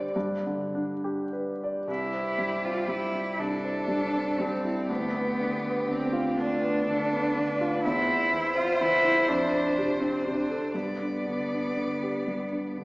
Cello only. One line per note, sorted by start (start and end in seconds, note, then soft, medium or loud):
0.00 0.12 D3 medium
1.90 2.66 E4 medium
2.65 2.91 F4 medium
2.89 3.41 E4 medium
3.39 4.42 D4 medium
4.40 4.91 C4 medium
4.90 5.89 B3 medium
5.90 6.37 C4 medium
6.37 7.80 D4 medium
7.83 8.58 E4 medium
8.56 8.83 F4 medium
8.81 9.30 E4 medium
9.29 10.02 D4 medium
10.01 10.27 C4 medium
10.26 10.76 D4 medium
10.75 12.84 B3 medium